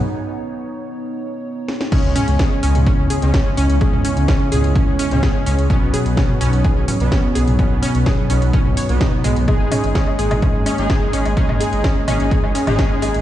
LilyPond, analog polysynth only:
\new Staff \with { instrumentName = "Analog polysynth" } { \clef bass \time 4/4 \key cis \dorian \tempo 4 = 127 r1 | <cis gis cis'>4. <cis gis cis'>4~ <cis gis cis'>16 <cis gis cis'>4~ <cis gis cis'>16 | <cis gis cis'>4. <cis gis cis'>4~ <cis gis cis'>16 <cis gis cis'>4~ <cis gis cis'>16 | <b, fis b>4. <b, fis b>4~ <b, fis b>16 <b, fis b>4~ <b, fis b>16 |
<b, fis b>4. <b, fis b>4~ <b, fis b>16 <b, fis b>4~ <b, fis b>16 | <gis dis' gis'>4. <gis dis' gis'>4~ <gis dis' gis'>16 <gis dis' gis'>4~ <gis dis' gis'>16 | <gis dis' gis'>4. <gis dis' gis'>4~ <gis dis' gis'>16 <gis dis' gis'>4~ <gis dis' gis'>16 | }